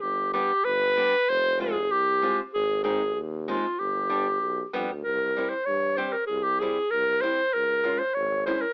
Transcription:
X:1
M:2/4
L:1/16
Q:1/4=96
K:none
V:1 name="Clarinet"
G2 G2 B4 | c2 _A2 G3 z | _A2 A2 z2 F2 | G6 z2 |
_B3 c _d2 c B | _A G A2 _B2 c2 | _B3 c _d2 c B |]
V:2 name="Nylon-string guitar"
z2 [G,B,D] z3 [G,B,D] z | z2 [_A,CF] z3 [A,CF] z | z2 [_A,C_E] z3 [A,CE] z | z2 [G,B,D] z3 [G,B,D] z |
z2 [G,CE] z3 [G,CG] z | z2 [G,CE] z3 [G,CE] z | z2 [_A,_DF] z3 [A,DE] z |]
V:3 name="Tuba" clef=bass
G,,,4 G,,,4 | F,,,4 C,,4 | _A,,,4 _E,,4 | G,,,4 B,,,2 F,, D,, |
C,,4 G,,4 | C,,4 C,,4 | _D,,4 _A,,,4 |]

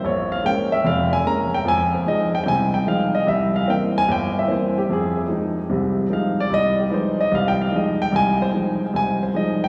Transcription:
X:1
M:4/4
L:1/8
Q:"Swing" 1/4=148
K:Fm
V:1 name="Grand piano"
d f g =e f a b g | a c e g [ga] g f e | =e f g a g e c G | A2 z4 f =d |
e G [=Bc] e (3f g f e g | a c z2 a c e g |]
V:2 name="Grand piano" clef=bass
B,,,2 [A,B,D] z [F,,,F,,]2 [A,B,D] z | [F,,F,]2 [F,A,E] z [C,,C,]2 [F,A,E] z | C,,2 [=E,B,C] z G,,,2 [E,B,C] z | F,,2 [F,A,E] z [C,,C,]2 [F,A,E] z |
C,,2 [F,A,E] z C,,2 [F,A,E] z | C,,2 [F,A,E] z C,,2 [F,A,E] z |]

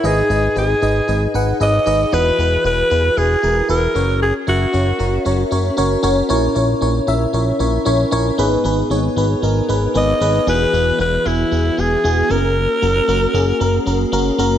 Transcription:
X:1
M:4/4
L:1/8
Q:1/4=115
K:G#m
V:1 name="Alto saxophone"
G2 G3 z d2 | B2 B2 G2 A2 | G F4 z3 | z8 |
z6 d2 | B2 B E2 G2 A- | A6 z2 |]
V:2 name="FM electric piano"
[DGBd] [DGBd] [DGBd] [DGBd] [DGBd] [DGBf] [DGBd] [DGBd] | [EFGB] [EFGB] [EFGB] [EFGB] [EFGB] [EFGA] [EFGB] [CFAc]- | [CFAc] [CFAe] [CFAc] [CFAc] [CFAc] [CFAc] [CFAc] [CFAc] | [CEAc] [CEAc] [CEAc] [CEAe] [CEAc] [CEAc] [CEAc] [CEAc] |
[B,DGB] [B,DGB] [B,DGc] [B,DGB] [B,DGA] [B,DGB] [B,DGB] [B,DGB] | [B,EFG] [B,EFG] [B,EFB] [B,EFG] [B,EFG] [B,EFG] [B,EFG] [A,CFA]- | [A,CFA] [A,CFA] [A,CFA] [A,CFG] [A,CFA] [A,CFA] [A,CFA] [A,CFA] |]
V:3 name="FM electric piano" clef=bass
G,,3 z4 z | E,3 z4 z | z8 | A,,3 z4 z |
G,,3 z4 z | E,3 z4 z | z8 |]
V:4 name="Analog synth bass" clef=bass
G,,, G,,, G,,, G,,, G,,, G,,, G,,, G,,, | E,,, E,,, E,,, E,,, E,,, E,,, E,,, F,,,- | F,,, F,,, F,,, F,,, F,,, F,,, F,,, F,,, | A,,, A,,, A,,, A,,, A,,, A,,, A,,, A,,, |
G,,, G,,, G,,, G,,, G,,, G,,, G,,, G,,, | E,,, E,,, E,,, E,,, E,,, E,,, E,,, F,,,- | F,,, F,,, F,,, F,,, F,,, F,,, F,,, F,,, |]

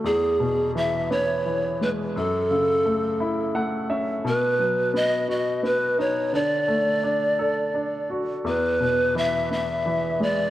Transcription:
X:1
M:6/8
L:1/8
Q:3/8=57
K:Emix
V:1 name="Pan flute"
G2 e c2 B | A4 z2 | B2 ^d d B c | d4- d z |
B2 e e2 d |]
V:2 name="Grand piano"
E,, B,, E, B, E, G, | F,, C, A, E [A,f] [Ce] | B,, F, B, F B, ^D | D, A, D A D F |
E,, B,, E, B, E, G, |]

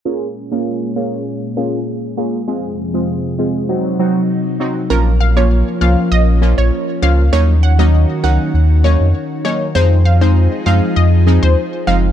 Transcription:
X:1
M:4/4
L:1/16
Q:1/4=99
K:Bbm
V:1 name="Synth pluck"
z16 | z16 | B z f d2 z f2 e z2 d z2 f z | d z g e2 z g2 z2 d z3 d z |
c z f c2 z f2 e z2 c z2 f z |]
V:2 name="Synth stab"
[B,DFA] z2 [B,DFA]3 [B,DFA]2 z2 [B,DFA] z3 [B,DFA] z | [A,CFA] z2 [A,CFA]3 [A,CFA]2 [G,CEG]2 [G,CEG] z3 [G,CEG] z | [F,B,DF] z2 [F,B,DF]3 [F,B,DF]2 z2 [F,B,DF] z3 [F,B,DF] z | [G,B,DE] z2 [G,B,DE]3 [G,B,DE]2 z2 [G,B,DE] z3 [G,B,DE] z |
[F,A,CE] z2 [F,A,CE]3 [F,A,CE]2 z2 [F,A,CE] z3 [F,A,CE] z |]
V:3 name="Analog synth pad" clef=bass
[B,,A,D]16 | [F,,C,]8 [G,E]8 | [F,B,D]16 | [E,G]16 |
[F,EA]16 |]
V:4 name="Sub bass" clef=bass
z16 | z16 | B,,,4- B,,, z C,, z B,,,3 B,,, z2 D,,2 | E,,4- E,, z D,, z E,,3 F,, z4 |
F,,4- F,, z G,, z F,,3 E,, z2 G,,,2 |]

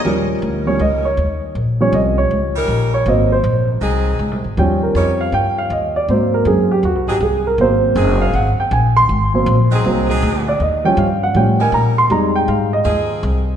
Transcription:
X:1
M:4/4
L:1/8
Q:"Swing" 1/4=159
K:Ebmix
V:1 name="Grand piano"
z3 d e d2 z | z d e d2 z2 d | e c2 z4 z | g B d f g f e =d |
c B A G _G =G A B | c3 f _g =g a c'- | c'4 z3 =d | e g f _g =g a b c' |
b g f e3 z2 |]
V:2 name="Grand piano" clef=bass
[F,G,D]3 [F,G,D] z4 | z [F,G,D]6- [F,G,D] | [_G,B,C] z6 z | [F,G,D]8 |
[_G,B,C]3 z4 z | [_G,B,C]3 z4 z | z [_G,B,C] z2 [G,B,C] z3 | z [F,G,D] z2 [F,G,D] z3 |
[G,A,E]3 z4 z |]
V:3 name="Saxophone section"
[G,DEB]4- [G,DEB] z3 | z4 z [G,DEB]3 | z4 [_G,CEA]3 z | z2 [G,DEB] z4 z |
z4 z [_G,CEA] z2 | z2 [_G,CEA]3 z3 | z3 [_G,CEA]2 [G,CEA]3 | z4 z [G,DEB]3 |
z4 [F,CEA]3 z |]
V:4 name="Upright bass" clef=bass
E,,2 =D,,2 _D,,2 E,,2 | B,,,2 C,,2 D,,2 B,,,2 | A,,,2 B,,,2 C,,2 (3D,, C,, A,,, | E,,2 F,,2 G,,2 E,,2 |
A,,2 _G,,2 (3E,, C,, A,,, C,,2 | A,,,2 _G,,,2 A,,, z B,,,2 | A,,,2 B,,,2 C,,2 =D,,2 | E,,2 G,,2 =A,,2 B,,2 |
F,,2 A,,2 E,,2 C,,2 |]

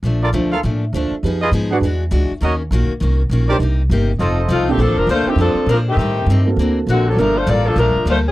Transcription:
X:1
M:4/4
L:1/8
Q:"Swing" 1/4=202
K:Bb
V:1 name="Trumpet section"
z [FABd] z [FABf] z4 | z [F_A_ce] z [_GAd_g] z4 | [_GB_de] z6 [=GBc=d] | z4 [FAce]3 z |
z8 | z8 | z8 |]
V:2 name="Grand piano"
z2 [DFAc] z3 [DFAc] z | [EG_A_c] z2 [D_GAc] z4 | z6 z [DEGB] | z6 z [B,,CDFA] |
z3 [CDFA]3 z2 | z3 [B,C_GA]3 z2 | [B,DFA] z6 z |]
V:3 name="Saxophone section"
z8 | z8 | z8 | z6 [A,CEF] [E,A,CG] |
[F,CDA] [F,CDB] [A,DFc] [E,A,CG] [F,CDA]2 [F,CDB] [E,A,CG]- | [E,A,CG]3 z3 [D,A,C^F] [^F,CDA] | [F,A,DB] [A,DFc] [B,FAd] [F,B,DA] [F,A,DB]2 [A,DFc] [_G,_DF_A] |]
V:4 name="Steel-string acoustic guitar"
[B,,F,A,D] z [B,,F,A,D] z [B,,F,A,D] z [B,,F,A,D] z | [F,_CE_A] z [F,CEA] z [=E,^G,D^F] z [E,G,DF] z | [E,B,_D_G] z [E,B,DG] z [E,B,DG] z [E,B,DG] z | [C,B,EG] z [C,B,EG] z [F,CEA] z [F,CEA] z |
[B,DAc] z [B,DAc] z [B,DAc] z [B,DAc] z | [A,,G,CE] z [A,,G,CE] z [D,B,C^F] z [D,B,CF] z | [G,B,FA] z [G,B,FA] z [G,B,FA] z [G,B,FA] z |]
V:5 name="Upright bass" clef=bass
B,,,2 D,,2 A,,2 D,, z | F,,2 _A,,2 =E,,2 _D,, z | E,,2 B,,, z C,,2 B,,,2 | C,,2 G,,,2 F,,,2 C,,2 |
(3B,,, A,,, F,,, D,, z F,, z B,,2 | A,,2 G,,2 D,,2 B,,,2 | G,,,2 A,,,2 B,,, z D,,2 |]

